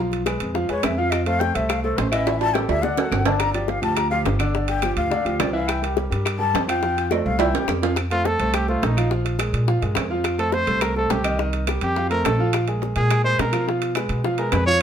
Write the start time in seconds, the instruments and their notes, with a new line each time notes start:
Already playing: upright bass B1, grand piano F3 F4 F5
0.12 high bongo, high timbale
0.26 grand piano G#3 G#4 B4, high bongo, high timbale, low timbale, claves
0.40 upright bass F2, high timbale
0.54 grand piano F3 F4 F5, high bongo
0.69 upright bass E2, grand piano G#3 G#4 B4, shakuhachi C#5, high bongo, high timbale
0.83 upright bass F2, shakuhachi E5, high bongo, low bongo, high timbale, low timbale, claves
0.98 grand piano F3 F4 F5, shakuhachi F5
1.11 shakuhachi D#5, high bongo, high timbale, claves
1.25 grand piano A3 A4 C5, shakuhachi F5, high bongo, high timbale
1.40 shakuhachi G5, high bongo, low timbale
1.55 upright bass C2, grand piano A3 A4 C5, shakuhachi E5, high timbale
1.69 shakuhachi F5, high bongo, high timbale, claves
1.84 grand piano A3 A4 C5, shakuhachi A4, high bongo
1.97 upright bass A1, shakuhachi C5, high bongo, low bongo, high timbale, low timbale
2.11 grand piano E3 E4 E5, shakuhachi D#5, high bongo, high timbale, claves
2.26 grand piano E3 E4 E5, shakuhachi E5, high bongo, high timbale
2.40 shakuhachi A5, high bongo, high timbale
2.54 grand piano G3 G4 A4, shakuhachi G5, high bongo, low timbale, claves
2.68 upright bass D2, shakuhachi E5, high timbale
2.82 grand piano D3 D4 D5, shakuhachi F#5, high bongo
2.97 grand piano F#3 F#4 A4, low bongo, low timbale
3.11 upright bass G1, low timbale, claves
3.26 grand piano D3 D4 D5, shakuhachi A5, low bongo, low timbale
3.39 shakuhachi A#5, high bongo, high timbale, claves
3.54 grand piano F3 F4 G4, shakuhachi D5, high bongo, high timbale
3.68 shakuhachi F5, high bongo, low timbale
3.82 upright bass D2, grand piano F3 F4 G4, shakuhachi A5, high timbale
3.96 shakuhachi A#5, high bongo, high timbale, claves
4.10 grand piano F3 F4 G4, shakuhachi F5, high bongo
4.25 upright bass G1, high bongo, low bongo, high timbale, low timbale
4.39 grand piano D3 D4 D5, high bongo, high timbale, claves
4.54 grand piano D3 D4 D5, high bongo
4.68 shakuhachi G5, high bongo, high timbale
4.82 grand piano F3 F4 G4, high bongo, high timbale, low timbale, claves
4.96 upright bass D2, shakuhachi F5, high timbale
5.10 grand piano D3 D4 D5, high bongo
5.25 upright bass D2, grand piano F3 F4 G4, high bongo, high timbale
5.39 upright bass C2, shakuhachi D5, high bongo, low bongo, high timbale, low timbale, claves
5.53 grand piano E3 E4 E5, shakuhachi F5
5.68 shakuhachi G5, high bongo, high timbale, claves
5.82 grand piano G3 G4 A#4, high bongo, high timbale
5.97 high bongo, low timbale
6.10 upright bass G2, grand piano G3 G4 A#4, high timbale
6.25 high bongo, high timbale, claves
6.39 grand piano G3 G4 A#4, shakuhachi A5, high bongo
6.54 upright bass F2, high bongo, low bongo, high timbale, low timbale
6.67 grand piano F3 F4 F5, shakuhachi G5, high bongo, high timbale, claves
6.83 grand piano F3 F4 F5, high bongo
6.97 high bongo, high timbale
7.11 grand piano A3 A4 C5, shakuhachi D#5, high bongo, high timbale, claves
7.25 upright bass C2, shakuhachi F5
7.39 grand piano E3 E4 E5, shakuhachi G5, high bongo, high timbale
7.54 upright bass E2, grand piano G3 G4 A#4, high bongo, low timbale
7.68 upright bass F2, high bongo, low bongo, low timbale, claves
7.82 grand piano F3 F4 F5, low timbale
7.96 high bongo, high timbale, claves
8.10 grand piano A3 A4 C5, trumpet F4, high bongo, high timbale
8.25 trumpet A4, high bongo, low timbale
8.39 upright bass C2, grand piano A3 A4 C5, high timbale
8.54 trumpet G4, high bongo, high timbale, claves
8.68 grand piano A3 A4 C5, trumpet F4, high bongo
8.82 upright bass A#1, trumpet D#4, high bongo, low bongo, high timbale, low timbale
8.97 grand piano F3 F4 F5, high bongo, high timbale, claves
9.11 grand piano F3 F4 F5, high bongo
9.25 high bongo, high timbale
9.39 grand piano G#3 G#4 A#4, high bongo, high timbale, low timbale, claves
9.53 upright bass A#2, high timbale
9.68 grand piano F3 F4 F5, high bongo
9.82 upright bass G2, grand piano G#3 G#4 A#4, high bongo, high timbale
9.95 upright bass F2, high bongo, low bongo, high timbale, low timbale, claves
10.10 grand piano F3 F4 F5
10.24 high bongo, high timbale, claves
10.38 grand piano A3 A4 C5, trumpet A4, high bongo, high timbale
10.52 trumpet C5, high bongo, low timbale
10.67 upright bass C2, grand piano A3 A4 C5, high timbale
10.81 trumpet A#4, high bongo, high timbale, claves
10.96 grand piano A3 A4 C5, trumpet A4, high bongo
11.10 upright bass C2, trumpet G4, high bongo, low bongo, high timbale, low timbale
11.24 grand piano D#3 D#4 D#5, high bongo, high timbale, claves
11.39 grand piano D#3 D#4 D#5, high bongo
11.53 high bongo, high timbale
11.67 grand piano G3 G4 A#4, high bongo, high timbale, low timbale, claves
11.81 upright bass F2, trumpet G4, high timbale
11.96 grand piano F3 F4 F5, high bongo
12.10 grand piano A3 A4 C5, trumpet A#4, high bongo, high timbale
12.24 upright bass A#1, trumpet A4, high bongo, low bongo, high timbale, low timbale, claves
12.39 grand piano F3 F4 F5
12.53 high bongo, high timbale, claves
12.68 grand piano G#3 G#4 A#4, high bongo, high timbale
12.82 high bongo, low timbale
12.96 upright bass A#2, grand piano G#3 G#4 A#4, trumpet G#4, high timbale
13.11 high bongo, high timbale, claves
13.24 grand piano G#3 G#4 A#4, trumpet C5, high bongo
13.39 upright bass B2, trumpet A#4, high bongo, low bongo, high timbale, low timbale
13.52 grand piano F3 F4 F5, high bongo, high timbale, claves
13.67 grand piano F3 F4 F5, high bongo
13.82 high bongo, high timbale
13.95 grand piano G#3 G#4 B4, high bongo, high timbale, low timbale, claves
14.09 upright bass B2, high timbale
14.24 grand piano F3 F4 F5, high bongo
14.38 grand piano G#3 G#4 B4, trumpet A#4, high bongo, high timbale
14.52 upright bass F2, trumpet B4, high bongo, low bongo, high timbale, low timbale, claves
14.66 grand piano F3 F4 F5, trumpet C#5